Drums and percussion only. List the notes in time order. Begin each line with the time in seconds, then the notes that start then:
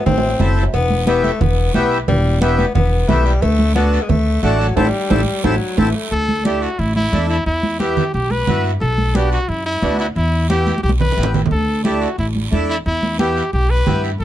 0.06 cowbell, high conga, low conga, high timbale, long guiro
0.18 low timbale
0.29 low timbale
0.40 high conga, low conga, low timbale, short guiro
0.57 short guiro
0.63 low timbale
0.74 cowbell, high conga, long guiro
0.90 high conga
1.07 high conga, short guiro
1.24 high conga, short guiro
1.41 cowbell, high conga, low conga, long guiro
1.74 high conga, low timbale, short guiro
1.92 short guiro
2.08 cowbell, high conga, low conga, long guiro
2.42 high conga, short guiro
2.59 high conga, short guiro
2.75 cowbell, high conga, low conga, long guiro
3.09 high conga, low conga, low timbale, short guiro
3.26 short guiro
3.42 cowbell, high conga, long guiro
3.59 high conga
3.76 high conga, short guiro
3.93 short guiro
4.09 cowbell, high conga, low conga, long guiro
4.43 high conga, short guiro
4.60 short guiro
4.77 high conga, high timbale, long guiro
5.10 high conga, high timbale, long guiro
5.44 high conga, high timbale, long guiro
5.78 high conga, high timbale, long guiro
6.12 high conga, long guiro
6.29 high conga
6.45 high conga, short guiro
6.62 short guiro
6.79 high conga, long guiro
6.96 high conga
7.13 high conga, short guiro
7.30 short guiro
7.46 high conga, long guiro
7.63 high conga
7.80 high conga, short guiro
7.97 low conga, short guiro
8.14 high conga, long guiro
8.31 high conga
8.47 high conga, low conga, short guiro
8.65 short guiro
8.81 high conga, long guiro
8.98 high conga
9.15 high conga, short guiro
9.32 short guiro
9.49 high conga, long guiro
9.82 high conga, short guiro
9.99 short guiro
10.16 high conga, long guiro
10.50 high conga, short guiro
10.67 high conga, short guiro
10.78 high conga
10.84 long guiro
10.89 high conga
11.00 low conga
11.12 low conga
11.18 short guiro
11.23 low conga
11.34 low conga, short guiro
11.46 low conga
11.51 high conga, long guiro
11.85 high conga, short guiro
12.02 short guiro
12.18 high conga, long guiro
12.35 high conga
12.52 high conga, short guiro
12.69 short guiro
12.86 high conga, long guiro
13.03 high conga
13.19 high conga, short guiro
13.37 short guiro
13.53 high conga, long guiro
13.87 high conga, low conga, short guiro
14.04 short guiro
14.21 high conga, long guiro